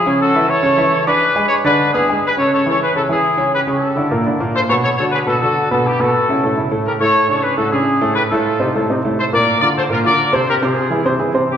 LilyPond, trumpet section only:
\new Staff \with { instrumentName = "Trumpet section" } { \time 4/4 \key a \major \tempo 4 = 207 << { gis'8 a'4 cis''2 b'8~ | b'4 cis''8 b'4 gis'4 b'8 | cis''8 cis''8 cis''8 b'8 a'8 gis'4. | b'8 a'2 r4 c''8 |
cis''8 cis''8 cis''8 b'8 a'8 a'4 a'8 | g'8 a'2 r4 bes'8 | cis''4 cis''8 b'8 a'8 gis'4. | b'8 a'2 r4 c''8 |
d''4 d''8 c''8 bes'8 d''4 c''8 | bes'8 gis'2 r4 g'8 | } \\ { e'8 fis'4 a'2 gis'8~ | gis'4 gis'8 gis'4 e'4 gis'8 | a'8 a'8 a'8 gis'8 e'8 e'4. | g'8 g'4. r4. a'8 |
a'8 a'8 a'8 gis'8 fis'8 fis'4 fis'8 | e'8 fis'4. r4. g'8 | a'4 a'8 gis'8 fis'8 e'4. | g'8 f'2 r4 a'8 |
bes'4 bes'8 a'8 f'8 bes'4 a'8 | g'8 f'2 r4 e'8 | } >> }